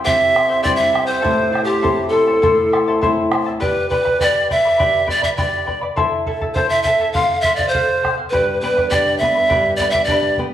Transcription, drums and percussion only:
0.07 bombo low medium
0.36 bombo rim medium
0.66 bombo low medium
0.95 bombo rim medium
1.25 bombo low medium
1.55 bombo rim soft
1.85 bombo low medium
2.43 bombo low medium
2.73 bombo rim medium
3.03 bombo low medium
3.32 bombo rim medium
3.62 bombo low medium
3.91 bombo low medium
4.07 bombo low soft
4.21 bombo low medium
4.51 bombo low medium
4.80 bombo low medium
5.08 bombo low medium
5.23 bombo low medium
5.38 bombo low medium
5.68 bombo low medium
5.97 bombo low medium
6.27 bombo low medium
6.42 bombo low medium
6.56 bombo low medium
6.85 bombo low medium
7.15 bombo low medium
7.44 bombo low medium
7.59 bombo low medium
7.75 bombo low medium
8.05 bombo rim soft
8.05 bombo low soft
8.35 bombo low medium
8.78 bombo low medium
8.92 bombo low medium
9.22 bombo low soft
9.51 bombo low medium
9.80 bombo low medium
9.94 bombo low medium
10.08 bombo low medium
10.38 bombo low soft

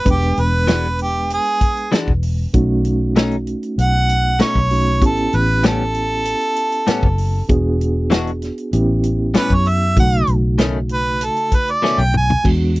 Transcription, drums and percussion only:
0.06 kick loud
0.06 closed hi-hat medium
0.22 closed hi-hat soft
0.37 closed hi-hat medium
0.68 snare loud
0.68 closed hi-hat medium
0.99 closed hi-hat medium
1.30 closed hi-hat medium
1.46 closed hi-hat soft
1.61 kick medium
1.61 closed hi-hat medium
1.77 closed hi-hat soft
1.92 snare loud
1.92 closed hi-hat medium
2.08 kick medium
2.23 open hi-hat medium
2.54 kick medium
2.54 closed hi-hat medium
2.85 closed hi-hat medium
3.16 snare loud
3.16 closed hi-hat medium
3.31 closed hi-hat soft
3.47 closed hi-hat medium
3.63 closed hi-hat soft
3.78 closed hi-hat medium
4.09 closed hi-hat medium
4.39 snare loud
4.39 closed hi-hat medium
4.55 kick medium
4.71 open hi-hat medium
5.01 kick loud
5.01 closed hi-hat medium
5.17 closed hi-hat soft
5.33 closed hi-hat medium
5.63 snare loud
5.63 closed hi-hat medium
5.95 closed hi-hat medium
6.25 closed hi-hat medium
6.41 closed hi-hat soft
6.56 closed hi-hat medium
6.72 closed hi-hat soft
6.87 snare loud
6.87 closed hi-hat medium
7.03 kick medium
7.18 open hi-hat medium
7.49 kick loud
7.49 closed hi-hat medium
7.81 closed hi-hat medium
8.11 snare loud
8.11 closed hi-hat medium
8.27 closed hi-hat soft
8.42 snare soft
8.42 closed hi-hat medium
8.58 closed hi-hat soft
8.73 closed hi-hat medium
9.03 closed hi-hat medium
9.34 snare loud
9.34 closed hi-hat medium
9.50 kick medium
9.65 open hi-hat medium
9.96 kick loud
9.96 closed hi-hat medium
10.12 closed hi-hat soft
10.27 closed hi-hat medium
10.58 snare loud
10.58 closed hi-hat medium
10.89 closed hi-hat medium
11.21 closed hi-hat medium
11.37 closed hi-hat soft
11.52 kick medium
11.52 closed hi-hat medium
11.68 closed hi-hat soft
11.84 snare medium
12.14 mid tom medium
12.30 floor tom medium
12.45 kick loud
12.45 crash loud
12.76 closed hi-hat medium

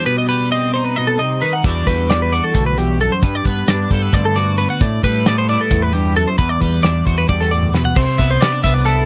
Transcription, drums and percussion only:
1.64 kick loud
1.64 closed hi-hat medium
1.87 kick medium
1.87 closed hi-hat soft
2.10 snare loud
2.10 closed hi-hat medium
2.32 closed hi-hat medium
2.55 kick medium
2.55 closed hi-hat medium
2.78 closed hi-hat medium
3.00 closed hi-hat medium
3.23 kick loud
3.23 closed hi-hat medium
3.45 kick medium
3.45 closed hi-hat medium
3.68 snare loud
3.68 closed hi-hat medium
3.91 kick medium
3.91 snare soft
3.91 closed hi-hat medium
4.12 kick loud
4.12 closed hi-hat medium
4.36 snare soft
4.36 closed hi-hat medium
4.58 closed hi-hat medium
4.81 kick loud
4.81 closed hi-hat medium
5.03 kick medium
5.03 closed hi-hat medium
5.26 snare loud
5.26 closed hi-hat medium
5.48 closed hi-hat medium
5.70 kick medium
5.70 closed hi-hat medium
5.93 closed hi-hat medium
6.16 closed hi-hat medium
6.38 kick loud
6.38 closed hi-hat medium
6.61 kick medium
6.61 closed hi-hat medium
6.84 snare loud
6.84 closed hi-hat medium
7.06 kick medium
7.06 closed hi-hat medium
7.29 kick loud
7.41 snare medium
7.63 mid tom medium
7.74 snare medium
7.85 floor tom medium
7.96 kick loud
7.96 crash loud
8.19 kick medium
8.19 closed hi-hat medium
8.42 snare loud
8.42 closed hi-hat medium
8.64 kick medium
8.64 closed hi-hat medium
8.86 closed hi-hat medium

